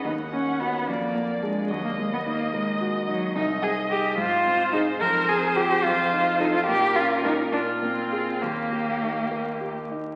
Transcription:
X:1
M:6/8
L:1/16
Q:3/8=72
K:D#phr
V:1 name="Violin"
f6 =d6 | d12 | [K:Ab] e6 c6 | c12 |
B6 F6 | G8- G z3 |]
V:2 name="Cello"
D2 C2 B,2 A,4 G,2 | F, A, G, B, A,2 G,4 F,2 | [K:Ab] E2 A2 G2 F4 E2 | B2 A2 G2 F4 E F |
G2 F2 E2 =D2 C4 | B,8- B,2 z2 |]
V:3 name="Grand piano"
D,,2 A,2 [DF]2 ^E,,2 A,2 [=DG]2 | D,,2 A,2 D2 A2 F2 D2 | [K:Ab] C,,2 C2 [EA]2 A,,2 C2 [EA]2 | F,,2 C2 [FA]2 F,,2 E2 [F=A]2 |
B,,2 D2 [FB]2 B,,2 B,2 [FA]2 | E,,2 B,2 E2 B2 G2 E2 |]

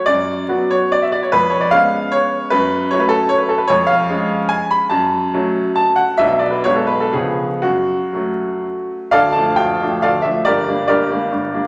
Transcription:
X:1
M:3/4
L:1/16
Q:1/4=141
K:F#m
V:1 name="Grand piano"
d6 c2 d e d c | B2 c d ^e4 c4 | B4 c B A2 c B A B | c2 ^e6 g2 b2 |
a8 a2 f2 | e2 d B c A B A G4 | F8- F2 z2 | [K:Dm] [Adf]2 a2 g4 [Adf]2 e2 |
[GBd]4 [GBd]8 |]
V:2 name="Grand piano" clef=bass
F,,4 [F,B,F]8 | ^E,,4 [G,B,C]8 | F,,4 [F,A,C]8 | ^E,,4 [G,C]8 |
F,,4 [F,A,C]8 | [B,,,F,B,D]4 [B,,,G,B,D]4 [C,,^E,B,C]4 | F,,4 [F,A,C]8 | [K:Dm] [D,,,D,,]2 [F,A,D]2 [D,,,D,,]2 [F,A,D]2 [D,,,D,,]2 [F,A,D]2 |
[G,,,G,,]2 [G,B,D]2 [G,,,G,,]2 [G,B,D]2 [G,,,G,,]2 [G,B,D]2 |]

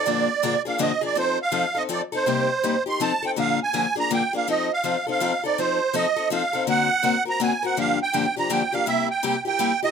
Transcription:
X:1
M:3/4
L:1/16
Q:"Swing" 1/4=164
K:Fmix
V:1 name="Accordion"
d6 f2 e2 d2 | c2 f4 e2 d2 c2- | c6 c'2 a2 g2 | f2 _a4 b2 g2 f2 |
e2 f4 f4 d2 | c4 e4 f4 | ^f6 ^a2 _a2 f2 | f2 g4 b2 g2 f2 |
=e2 g4 g4 _e2 |]
V:2 name="Steel-string acoustic guitar"
[B,,D,F,B,D_A]2 z2 [B,,D,F,B,DA] z [F,B,DA]2 [B,,D,F,B,DA] z [F,B,DA]2 | [F,CEA]2 z2 [F,CEA] z [CEA]2 [F,CEA] z [CEA]2 | [C,G,B,EG]2 z2 [C,G,B,EG] z [B,EG]2 [F,CEA] z [CEA]2 | [B,,D,F,B,D_A]2 z2 [B,,D,F,B,DA] z [F,B,DA]2 [B,,D,F,B,DA] z [F,B,DA]2 |
[F,CEA]2 z2 [F,CEA] z [CEA]2 [F,CEA] z [CEA]2 | [F,CEA]2 z2 [F,CEA] z [CEA]2 [F,CEA] z [CEA]2 | [D,^A,C^F^A]2 z2 [D,A,CFA] z [CFA]2 [D,A,CFA] z [CFA]2 | [G,,D,F,B,DG]2 z2 [G,,D,F,B,DG] z [F,B,DG]2 [G,,D,F,B,DG] z [F,B,DG]2 |
[C,G,B,=EG]2 z2 [C,G,B,EG] z [B,EG]2 [C,G,B,EG] z [B,EG]2 |]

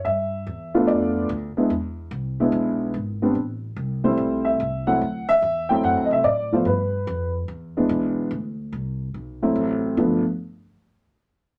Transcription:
X:1
M:4/4
L:1/16
Q:"Swing" 1/4=145
K:Ddor
V:1 name="Upright piano"
e6 z2 d4 z4 | z16 | z6 c4 e4 ^f2- | ^f2 e4 g2 f3/2 _e/2 =e2 d2 c2 |
B6 z8 z2 | z16 | z16 |]
V:2 name="Upright piano"
z6 [A,B,DF]6 z2 [_A,B,DE]2 | z6 [^G,B,DE]6 z2 [=G,B,CD]2 | z6 [G,A,CE]6 z2 [^F,A,CE]2 | z6 [^F,A,CE]6 z2 [=F,A,B,F]2 |
z8 z2 [E,^G,B,D]6 | z8 z2 [^F,A,CE]6 | [F,A,B,D]2 z12 z2 |]
V:3 name="Upright bass" clef=bass
G,,4 E,,4 F,,4 D,,2 z2 | E,,4 C,,4 B,,,4 ^G,,,4 | A,,,4 C,,4 B,,,4 C,,4 | D,,4 E,,4 (3^F,,2 D,,2 C,,2 A,,4 |
G,,4 F,,4 E,,4 B,,,4 | D,,4 C,,4 B,,,4 A,,,4 | G,,,2 z12 z2 |]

